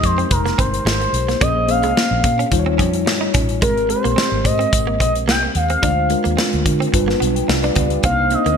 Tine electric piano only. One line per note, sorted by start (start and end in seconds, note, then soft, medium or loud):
0.00 0.22 G#3 medium
0.00 0.22 D#4 medium
0.00 0.23 G4 medium
0.00 0.23 A#4 medium
1.41 1.60 A#3 medium
1.41 1.60 C#4 medium
1.41 1.61 G#4 medium
1.41 1.61 C5 medium
1.67 2.43 A#3 medium
1.67 1.75 C4 medium
1.67 2.43 G#4 medium
1.67 2.43 C5 medium
1.74 2.46 C#4 medium
2.52 3.40 G3 medium
2.52 3.40 D#4 medium
2.52 3.40 F4 medium
2.52 2.59 C5 medium
2.59 3.44 C#5 medium
3.62 3.81 G#3 medium
3.62 3.81 C4 medium
3.62 3.82 G4 medium
3.62 3.82 A#4 medium
3.89 4.64 G#3 medium
3.89 4.64 C4 medium
3.89 4.64 G4 medium
3.89 3.97 A#4 medium
3.96 4.67 C5 medium
5.82 6.01 G#3 medium
5.82 6.02 D4 medium
5.82 6.02 F4 medium
5.82 6.02 C5 medium
6.09 6.84 G#3 medium
6.09 6.85 D4 medium
6.09 6.85 F4 medium
6.09 6.85 A#4 medium
6.93 7.82 G3 medium
6.93 7.82 D4 medium
6.93 7.82 F4 medium
6.93 7.21 B4 loud
7.35 7.48 G5 medium
7.48 7.62 D5 medium
7.48 7.63 F5 medium
7.63 7.75 B4 medium
7.63 7.75 D5 medium
7.76 7.90 G4 medium
7.76 7.90 B4 medium
7.91 8.17 G4 medium
8.04 8.23 A#3 medium
8.04 8.23 D4 medium
8.04 8.23 D#4 medium
8.04 8.24 C5 medium
8.31 8.57 A#3 medium
8.31 8.57 C4 medium
8.31 8.57 D#4 medium
8.31 8.57 C5 medium